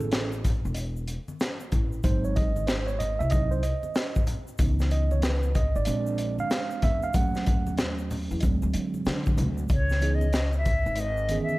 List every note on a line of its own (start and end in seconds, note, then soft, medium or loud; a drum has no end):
0.00 0.61 A1 loud
0.00 0.40 B3 soft
0.00 0.41 C#4 medium
0.00 0.40 G#4 medium
0.00 0.30 A4 medium
0.00 high conga medium
0.00 shaker soft
0.11 snare loud
0.11 closed hi-hat medium
0.11 high conga soft
0.11 shaker medium
0.32 shaker soft
0.44 kick medium
0.44 closed hi-hat medium
0.44 low conga medium
0.44 shaker soft
0.65 1.16 E1 medium
0.65 shaker soft
0.74 closed hi-hat medium
0.74 shaker medium
0.96 shaker soft
1.08 closed hi-hat medium
1.08 shaker soft
1.28 high conga medium
1.28 shaker soft
1.40 snare loud
1.40 closed hi-hat medium
1.40 shaker medium
1.60 shaker soft
1.72 1.98 A1 loud
1.72 kick medium
1.72 closed hi-hat medium
1.72 low conga medium
1.72 shaker soft
1.92 shaker soft
2.03 3.16 G#1 loud
2.03 2.49 F#3 soft
2.03 2.50 C4 medium
2.03 2.50 D#4 medium
2.03 2.23 C5 medium
2.03 kick loud
2.03 closed hi-hat medium
2.03 shaker medium
2.24 2.36 C#5 medium
2.24 shaker soft
2.36 2.69 D#5 medium
2.36 kick loud
2.36 closed hi-hat medium
2.36 shaker soft
2.56 high conga medium
2.56 shaker soft
2.67 2.88 C5 medium
2.67 snare loud
2.67 closed hi-hat medium
2.67 high conga soft
2.67 shaker medium
2.87 2.99 C#5 medium
2.87 shaker soft
2.99 3.20 D#5 loud
2.99 closed hi-hat medium
2.99 low conga medium
2.99 shaker medium
3.19 3.71 C2 medium
3.19 3.32 E5 loud
3.19 shaker soft
3.30 3.60 F#3 soft
3.30 3.60 C4 soft
3.30 3.61 D#4 medium
3.30 3.52 D#5 loud
3.30 kick loud
3.30 closed hi-hat medium
3.30 shaker medium
3.51 3.64 C5 medium
3.51 shaker soft
3.63 4.23 D#5 medium
3.63 closed hi-hat medium
3.63 shaker soft
3.83 high conga medium
3.83 shaker soft
3.95 snare loud
3.95 closed hi-hat medium
3.95 shaker medium
4.15 kick loud
4.15 shaker soft
4.27 closed hi-hat medium
4.27 low conga medium
4.27 shaker soft
4.47 shaker soft
4.58 5.71 C#2 loud
4.58 5.51 E3 medium
4.58 5.51 B3 soft
4.58 5.51 D#4 medium
4.58 kick loud
4.58 closed hi-hat medium
4.58 shaker medium
4.79 snare soft
4.79 shaker soft
4.91 5.12 D#5 medium
4.91 closed hi-hat medium
4.91 shaker soft
5.11 5.22 C#5 medium
5.11 high conga medium
5.11 shaker soft
5.22 5.56 B4 medium
5.22 snare loud
5.22 closed hi-hat medium
5.22 high conga soft
5.22 shaker medium
5.43 shaker soft
5.55 5.76 D#5 medium
5.55 kick medium
5.55 closed hi-hat medium
5.55 low conga medium
5.55 shaker medium
5.76 5.85 G#1 medium
5.76 6.35 D5 medium
5.76 shaker soft
5.85 6.38 A#1 loud
5.85 7.10 G#3 medium
5.85 7.11 C4 medium
5.85 7.11 D4 medium
5.85 closed hi-hat loud
5.85 shaker medium
6.07 shaker soft
6.18 closed hi-hat medium
6.18 shaker soft
6.39 6.84 F5 loud
6.39 high conga soft
6.39 shaker soft
6.50 snare loud
6.50 closed hi-hat medium
6.50 shaker medium
6.71 shaker soft
6.82 7.08 E2 medium
6.82 7.04 E5 loud
6.82 kick medium
6.82 closed hi-hat medium
6.82 low conga medium
6.82 shaker soft
7.02 7.14 F5 loud
7.02 shaker soft
7.13 8.27 D#2 medium
7.13 8.38 F#3 medium
7.13 8.38 A3 soft
7.13 8.38 C#4 medium
7.13 7.75 F#5 loud
7.13 kick loud
7.13 closed hi-hat medium
7.13 shaker medium
7.34 snare soft
7.34 shaker soft
7.46 kick loud
7.46 closed hi-hat medium
7.46 shaker soft
7.67 high conga medium
7.67 shaker soft
7.77 snare loud
7.77 closed hi-hat medium
7.77 low conga medium
7.77 shaker medium
7.98 shaker soft
8.10 open hi-hat medium
8.10 low conga medium
8.10 shaker soft
8.31 8.40 E2 medium
8.31 shaker soft
8.40 8.59 D2 loud
8.40 9.66 F#3 medium
8.40 9.66 G#3 medium
8.40 9.66 C4 medium
8.40 kick loud
8.40 closed hi-hat medium
8.40 shaker medium
8.62 8.72 D2 medium
8.62 high conga medium
8.62 shaker soft
8.73 9.00 D3 medium
8.73 closed hi-hat medium
8.73 shaker soft
8.94 high conga soft
8.94 shaker soft
9.05 9.39 D3 loud
9.05 snare loud
9.05 closed hi-hat loud
9.05 shaker medium
9.26 kick loud
9.26 shaker soft
9.37 9.63 D2 loud
9.37 closed hi-hat medium
9.37 high conga medium
9.37 low conga medium
9.37 shaker medium
9.58 shaker soft
9.69 10.82 C#2 medium
9.69 10.16 C#5 medium
9.69 kick loud
9.69 closed hi-hat medium
9.69 shaker medium
9.89 snare soft
9.89 shaker soft
10.00 10.26 E3 medium
10.00 10.26 B3 medium
10.00 10.27 C#4 medium
10.00 10.27 D#4 medium
10.00 10.27 G#4 medium
10.00 closed hi-hat medium
10.00 shaker soft
10.15 10.56 D#5 medium
10.21 high conga medium
10.21 shaker medium
10.33 snare loud
10.33 closed hi-hat medium
10.33 high conga soft
10.33 shaker medium
10.53 shaker soft
10.57 11.01 E5 medium
10.65 kick medium
10.65 closed hi-hat medium
10.65 low conga medium
10.65 shaker soft
10.86 11.37 G#1 medium
10.86 shaker soft
10.96 closed hi-hat medium
10.96 shaker medium
11.00 11.41 D#5 medium
11.17 shaker soft
11.28 11.30 D#3 medium
11.28 11.59 D#3 medium
11.28 11.59 B3 medium
11.28 11.59 C#4 medium
11.28 11.59 G#4 medium
11.28 closed hi-hat medium
11.28 shaker soft
11.35 11.59 E3 medium
11.43 11.59 E5 medium
11.49 high conga soft
11.49 shaker soft